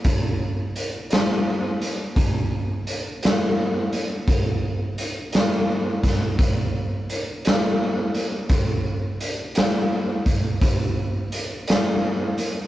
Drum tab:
HH |x-xx-xx-xx-x|x-xx-xx-xx-x|x-xx-xx-xx-x|
SD |---o-----o--|---o-o---o--|---o-----o--|
BD |o-----o-----|o----oo-----|o----oo-----|